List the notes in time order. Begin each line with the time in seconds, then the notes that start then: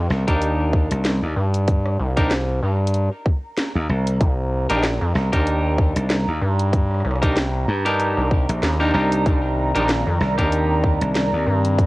0.10 C2, snare
0.27 D#2 D4 D#4 G4 A#4, kick, closed hi-hat
0.42 closed hi-hat
0.73 kick
0.91 C2 A#5, closed hi-hat
1.05 snare, closed hi-hat
1.23 D#2
1.36 G2
1.54 closed hi-hat
1.68 kick, closed hi-hat
1.86 cross-stick
2.00 C2
2.17 D4 D#4 G4 A#4, kick, closed hi-hat
2.31 snare, closed hi-hat
2.63 G2
2.87 closed hi-hat
2.94 closed hi-hat
3.26 kick
3.57 snare, closed hi-hat
3.75 D#2
3.89 C2
4.07 closed hi-hat
4.20 C2, kick, closed hi-hat
4.69 A#1 D4 D#4 G4 A#4, closed hi-hat
4.83 snare, closed hi-hat
5.01 F2
5.15 C2, snare
5.32 D#2 D4 D#4 G4 A#4, kick, closed hi-hat
5.47 closed hi-hat
5.78 kick
5.96 C2, closed hi-hat
6.10 snare, closed hi-hat
6.28 D#2
6.42 G2
6.59 closed hi-hat
6.73 kick, closed hi-hat
6.91 cross-stick
6.94 cross-stick
7.00 cross-stick
7.05 C2, cross-stick
7.11 cross-stick
7.16 cross-stick
7.22 D4 D#4 G4 A#4, kick, closed hi-hat
7.37 snare, closed hi-hat
7.68 G2
7.85 D4 D#4 G4 A#4, closed hi-hat
8.00 closed hi-hat
8.17 C2
8.31 kick
8.49 A#1, closed hi-hat
8.63 D#2, snare, closed hi-hat
8.80 D4 D#4 G4 A#4
8.94 C2 D4 D#4 G4 A#4
9.12 closed hi-hat
9.26 C2 D#3 C4 A#4 D5, kick, closed hi-hat
9.75 A#1 D4 D#4 G4 A#4, closed hi-hat
9.89 snare, closed hi-hat
10.07 F2
10.21 C2, snare
10.38 D#2 D4 D#4 G4 A#4, kick, closed hi-hat
10.52 closed hi-hat
10.84 kick
11.01 C2, closed hi-hat
11.15 snare, closed hi-hat
11.33 D#2
11.47 G2
11.65 closed hi-hat
11.79 kick, closed hi-hat